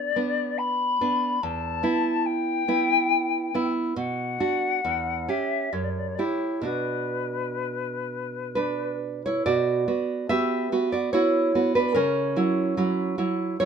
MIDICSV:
0, 0, Header, 1, 3, 480
1, 0, Start_track
1, 0, Key_signature, 2, "minor"
1, 0, Tempo, 891530
1, 319, Tempo, 826446
1, 803, Time_signature, 3, 2, 24, 8
1, 1279, Tempo, 860832
1, 2719, Tempo, 895522
1, 3199, Tempo, 943396
1, 4639, Tempo, 907716
1, 5119, Tempo, 827586
1, 7549, End_track
2, 0, Start_track
2, 0, Title_t, "Flute"
2, 0, Program_c, 0, 73
2, 0, Note_on_c, 0, 74, 67
2, 313, Note_on_c, 0, 83, 58
2, 321, Note_off_c, 0, 74, 0
2, 804, Note_on_c, 0, 81, 60
2, 812, Note_off_c, 0, 83, 0
2, 1285, Note_on_c, 0, 79, 71
2, 1294, Note_off_c, 0, 81, 0
2, 2084, Note_off_c, 0, 79, 0
2, 2240, Note_on_c, 0, 78, 64
2, 2970, Note_on_c, 0, 76, 49
2, 2978, Note_off_c, 0, 78, 0
2, 3200, Note_on_c, 0, 73, 40
2, 3208, Note_off_c, 0, 76, 0
2, 3256, Note_on_c, 0, 74, 37
2, 3264, Note_off_c, 0, 73, 0
2, 3287, Note_on_c, 0, 73, 36
2, 3295, Note_off_c, 0, 74, 0
2, 3331, Note_on_c, 0, 74, 38
2, 3339, Note_off_c, 0, 73, 0
2, 3379, Note_on_c, 0, 73, 38
2, 3386, Note_off_c, 0, 74, 0
2, 3415, Note_on_c, 0, 74, 36
2, 3422, Note_off_c, 0, 73, 0
2, 3463, Note_on_c, 0, 73, 47
2, 3470, Note_off_c, 0, 74, 0
2, 3662, Note_off_c, 0, 73, 0
2, 3665, Note_on_c, 0, 71, 45
2, 4859, Note_off_c, 0, 71, 0
2, 7549, End_track
3, 0, Start_track
3, 0, Title_t, "Nylon-string guitar"
3, 0, Program_c, 1, 24
3, 0, Note_on_c, 1, 59, 34
3, 0, Note_on_c, 1, 62, 36
3, 58, Note_off_c, 1, 59, 0
3, 59, Note_off_c, 1, 62, 0
3, 87, Note_on_c, 1, 59, 35
3, 90, Note_on_c, 1, 62, 38
3, 545, Note_off_c, 1, 59, 0
3, 546, Note_off_c, 1, 62, 0
3, 562, Note_on_c, 1, 59, 35
3, 564, Note_on_c, 1, 62, 37
3, 779, Note_off_c, 1, 59, 0
3, 779, Note_off_c, 1, 62, 0
3, 807, Note_on_c, 1, 40, 50
3, 1034, Note_off_c, 1, 40, 0
3, 1038, Note_on_c, 1, 59, 34
3, 1041, Note_on_c, 1, 64, 42
3, 1493, Note_off_c, 1, 59, 0
3, 1494, Note_off_c, 1, 64, 0
3, 1523, Note_on_c, 1, 59, 36
3, 1525, Note_on_c, 1, 64, 40
3, 1979, Note_off_c, 1, 59, 0
3, 1980, Note_off_c, 1, 64, 0
3, 2003, Note_on_c, 1, 59, 33
3, 2007, Note_on_c, 1, 64, 39
3, 2216, Note_off_c, 1, 59, 0
3, 2218, Note_off_c, 1, 64, 0
3, 2237, Note_on_c, 1, 47, 47
3, 2468, Note_off_c, 1, 47, 0
3, 2482, Note_on_c, 1, 62, 32
3, 2483, Note_on_c, 1, 66, 37
3, 2700, Note_off_c, 1, 62, 0
3, 2700, Note_off_c, 1, 66, 0
3, 2729, Note_on_c, 1, 40, 45
3, 2955, Note_off_c, 1, 40, 0
3, 2964, Note_on_c, 1, 61, 31
3, 2967, Note_on_c, 1, 67, 31
3, 3181, Note_off_c, 1, 61, 0
3, 3181, Note_off_c, 1, 67, 0
3, 3201, Note_on_c, 1, 42, 39
3, 3425, Note_off_c, 1, 42, 0
3, 3435, Note_on_c, 1, 67, 30
3, 3437, Note_on_c, 1, 64, 26
3, 3652, Note_off_c, 1, 64, 0
3, 3652, Note_off_c, 1, 67, 0
3, 3653, Note_on_c, 1, 47, 38
3, 3661, Note_on_c, 1, 62, 30
3, 3668, Note_on_c, 1, 66, 27
3, 4639, Note_on_c, 1, 71, 42
3, 4640, Note_off_c, 1, 62, 0
3, 4646, Note_on_c, 1, 62, 34
3, 4986, Note_off_c, 1, 62, 0
3, 4989, Note_off_c, 1, 71, 0
3, 5011, Note_on_c, 1, 73, 43
3, 5019, Note_on_c, 1, 64, 32
3, 5089, Note_off_c, 1, 47, 0
3, 5097, Note_off_c, 1, 66, 0
3, 5115, Note_off_c, 1, 73, 0
3, 5117, Note_on_c, 1, 74, 61
3, 5118, Note_on_c, 1, 47, 41
3, 5119, Note_off_c, 1, 64, 0
3, 5125, Note_on_c, 1, 66, 44
3, 5354, Note_off_c, 1, 66, 0
3, 5357, Note_off_c, 1, 47, 0
3, 5360, Note_on_c, 1, 59, 33
3, 5360, Note_on_c, 1, 66, 35
3, 5581, Note_off_c, 1, 59, 0
3, 5582, Note_off_c, 1, 66, 0
3, 5586, Note_off_c, 1, 74, 0
3, 5602, Note_on_c, 1, 76, 66
3, 5606, Note_on_c, 1, 59, 35
3, 5607, Note_on_c, 1, 66, 39
3, 5610, Note_on_c, 1, 67, 50
3, 5824, Note_off_c, 1, 59, 0
3, 5824, Note_off_c, 1, 66, 0
3, 5851, Note_on_c, 1, 59, 33
3, 5853, Note_on_c, 1, 66, 38
3, 5945, Note_off_c, 1, 67, 0
3, 5950, Note_off_c, 1, 76, 0
3, 5967, Note_off_c, 1, 66, 0
3, 5967, Note_on_c, 1, 74, 45
3, 5974, Note_on_c, 1, 66, 36
3, 6065, Note_off_c, 1, 59, 0
3, 6082, Note_off_c, 1, 66, 0
3, 6083, Note_off_c, 1, 74, 0
3, 6086, Note_on_c, 1, 73, 59
3, 6091, Note_on_c, 1, 59, 31
3, 6094, Note_on_c, 1, 64, 41
3, 6096, Note_on_c, 1, 66, 36
3, 6308, Note_off_c, 1, 59, 0
3, 6309, Note_off_c, 1, 66, 0
3, 6331, Note_on_c, 1, 59, 32
3, 6332, Note_on_c, 1, 66, 34
3, 6430, Note_off_c, 1, 64, 0
3, 6435, Note_off_c, 1, 73, 0
3, 6448, Note_on_c, 1, 71, 55
3, 6452, Note_on_c, 1, 62, 41
3, 6549, Note_off_c, 1, 66, 0
3, 6550, Note_off_c, 1, 59, 0
3, 6559, Note_on_c, 1, 70, 59
3, 6564, Note_off_c, 1, 62, 0
3, 6565, Note_on_c, 1, 49, 53
3, 6569, Note_on_c, 1, 61, 43
3, 6570, Note_off_c, 1, 71, 0
3, 6801, Note_off_c, 1, 49, 0
3, 6803, Note_on_c, 1, 54, 35
3, 6806, Note_on_c, 1, 64, 39
3, 7019, Note_off_c, 1, 54, 0
3, 7021, Note_off_c, 1, 64, 0
3, 7040, Note_on_c, 1, 54, 38
3, 7045, Note_on_c, 1, 64, 43
3, 7252, Note_off_c, 1, 70, 0
3, 7255, Note_off_c, 1, 54, 0
3, 7256, Note_off_c, 1, 61, 0
3, 7256, Note_off_c, 1, 64, 0
3, 7276, Note_on_c, 1, 54, 37
3, 7278, Note_on_c, 1, 64, 42
3, 7492, Note_off_c, 1, 54, 0
3, 7493, Note_off_c, 1, 64, 0
3, 7519, Note_on_c, 1, 73, 63
3, 7524, Note_on_c, 1, 54, 36
3, 7528, Note_on_c, 1, 64, 46
3, 7549, Note_off_c, 1, 54, 0
3, 7549, Note_off_c, 1, 64, 0
3, 7549, Note_off_c, 1, 73, 0
3, 7549, End_track
0, 0, End_of_file